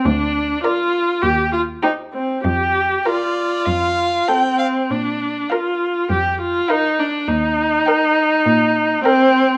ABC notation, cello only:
X:1
M:4/4
L:1/8
Q:1/4=101
K:Bb
V:1 name="Cello" clef=bass
D,,2 z2 E,,2 z2 | F,,2 z2 F,,2 z2 | B,,2 z2 F,,2 z2 | E,,2 z2 B,,2 z2 |]